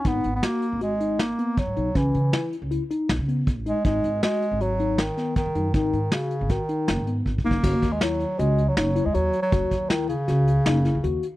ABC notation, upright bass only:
X:1
M:5/4
L:1/16
Q:1/4=158
K:F#mix
V:1 name="Upright bass" clef=bass
G,,,2 G,,,2 z3 G,,,8 z2 G,, B,,,2 | C,,2 C,2 z3 C,,2 z3 B,,, C,3 B,,, =A,,,2 z | G,,,2 G,,,2 z3 G,,,8 z2 G,, F,,2 | G,,,2 G,,2 z3 G,,,2 z3 F,,, G,,3 G,,,2 F,,,2 |
F,,, D,,6- D,, C,,4 F,,,3 D,, D,,2 z2 | F,,, D,,6- D,, C,,4 F,,,3 D,, D,,2 z2 |]